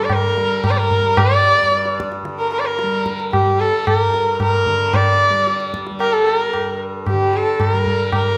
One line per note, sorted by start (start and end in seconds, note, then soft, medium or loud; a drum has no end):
0.00 1.61 G2 medium
0.00 2.23 D3 medium
0.00 0.37 G3 medium
0.00 0.15 D5 medium
0.10 0.65 A#4 medium
0.10 tabla na medium
0.10 tabla ge medium
0.37 1.00 G3 medium
0.37 tabla te medium
0.64 0.72 A#4 medium
0.64 tabla na medium
0.64 tabla ge medium
0.70 0.79 D5 medium
0.77 1.20 A#4 medium
0.91 tabla ge soft
1.00 2.83 G3 medium
1.17 1.99 D5 loud
1.17 tabla na medium
1.17 tabla ge medium
1.62 4.08 G2 medium
1.72 tabla te medium
1.85 tabla te medium
2.00 tabla ke medium
2.12 tabla te medium
2.23 4.67 D3 medium
2.23 tabla te medium
2.39 2.51 A#4 medium
2.52 2.61 A#4 medium
2.52 tabla te medium
2.59 2.67 D5 medium
2.65 3.19 A#4 medium
2.79 tabla te medium
2.83 3.46 G3 medium
2.92 tabla te medium
3.06 tabla ke medium
3.20 tabla te soft
3.32 3.61 G4 medium
3.32 tabla na medium
3.32 tabla ge medium
3.46 5.30 G3 medium
3.60 3.86 A4 medium
3.86 3.97 A4 medium
3.86 tabla na medium
3.86 tabla ge medium
3.97 4.39 A#4 medium
4.08 6.53 G2 medium
4.14 tabla te medium
4.40 4.96 A#4 medium
4.40 tabla na medium
4.40 tabla ge medium
4.66 7.12 D3 medium
4.66 tabla ge soft
4.93 5.74 D5 medium
4.93 tabla na medium
4.93 tabla ge medium
5.30 5.91 G3 medium
5.47 tabla te medium
5.60 tabla te medium
5.74 tabla ke medium
5.87 tabla te medium
5.91 7.74 G3 medium
6.00 6.14 A#4 medium
6.00 tabla na medium
6.13 6.25 A4 medium
6.25 6.37 A4 medium
6.25 tabla na medium
6.37 6.79 A#4 medium
6.53 8.38 G2 soft
6.53 tabla na medium
7.07 7.38 G4 medium
7.07 tabla na medium
7.07 tabla ge medium
7.12 8.38 D3 medium
7.33 7.62 A4 medium
7.33 tabla te medium
7.60 7.73 A4 medium
7.60 tabla na medium
7.60 tabla ge medium
7.73 8.38 G3 medium
7.73 8.14 A#4 medium
7.86 tabla ge soft
8.12 8.38 A#4 medium
8.12 tabla na medium
8.12 tabla ge medium